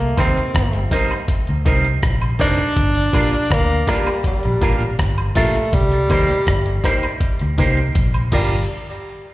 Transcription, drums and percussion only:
0.17 kick, closed hi-hat, tambourine, high woodblock
0.37 closed hi-hat
0.54 kick, cross-stick, closed hi-hat
0.73 closed hi-hat
0.91 kick, closed hi-hat, tambourine
1.11 closed hi-hat, high woodblock
1.28 kick, closed hi-hat
1.47 closed hi-hat
1.66 kick, closed hi-hat, tambourine
1.85 closed hi-hat
2.03 kick, cross-stick, closed hi-hat
2.21 closed hi-hat, high woodblock
2.39 kick, open hi-hat, tambourine
2.59 closed hi-hat
2.76 kick, closed hi-hat
2.95 closed hi-hat
3.13 kick, closed hi-hat, tambourine, high woodblock
3.33 closed hi-hat
3.50 kick, cross-stick, closed hi-hat
3.69 closed hi-hat
3.87 kick, cross-stick, closed hi-hat, tambourine
4.07 closed hi-hat, high woodblock
4.24 kick, closed hi-hat
4.43 closed hi-hat
4.61 kick, closed hi-hat, tambourine
4.80 closed hi-hat
4.99 kick, cross-stick, closed hi-hat
5.18 closed hi-hat, high woodblock
5.35 kick, open hi-hat, tambourine
5.55 closed hi-hat
5.73 kick, closed hi-hat
5.92 closed hi-hat
6.10 kick, closed hi-hat, tambourine, high woodblock
6.30 closed hi-hat
6.47 kick, cross-stick, closed hi-hat
6.66 closed hi-hat
6.84 kick, cross-stick, closed hi-hat, tambourine
7.03 closed hi-hat, high woodblock
7.20 kick, closed hi-hat
7.39 closed hi-hat
7.58 kick, closed hi-hat, tambourine
7.77 closed hi-hat
7.95 kick, closed hi-hat
8.14 closed hi-hat, high woodblock
8.32 kick, crash, tambourine

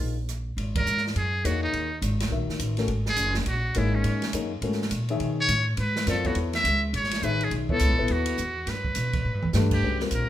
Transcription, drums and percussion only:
0.29 cross-stick, closed hi-hat
0.58 ride
0.75 kick, ride
0.86 hi-hat pedal
0.97 snare
1.07 snare
1.16 ride
1.45 hi-hat pedal, ride
1.73 ride
2.02 hi-hat pedal, ride
2.20 snare, ride
2.49 snare
2.59 hi-hat pedal, ride
2.77 snare, ride
2.88 ride
3.06 snare
3.16 hi-hat pedal, ride
3.34 snare
3.46 ride
3.74 hi-hat pedal, ride
4.04 ride
4.22 snare, ride
4.33 hi-hat pedal, ride
4.62 ride
4.72 snare
4.82 snare
4.91 hi-hat pedal, ride
5.09 ride
5.20 ride
5.48 hi-hat pedal, ride
5.77 ride
5.96 snare
6.07 snare, hi-hat pedal, ride
6.25 kick, ride
6.35 ride
6.53 snare, ride
6.65 hi-hat pedal, ride
6.94 ride
7.04 snare
7.11 snare, ride
7.22 hi-hat pedal
7.41 ride
7.51 ride
7.69 kick
7.79 hi-hat pedal, ride
8.08 ride
8.26 ride
8.37 hi-hat pedal
8.67 snare, ride
8.84 kick
8.95 hi-hat pedal, ride
9.13 kick, ride
9.42 mid tom
9.53 snare, hi-hat pedal
9.71 kick, crash
10.00 snare
10.11 hi-hat pedal, ride

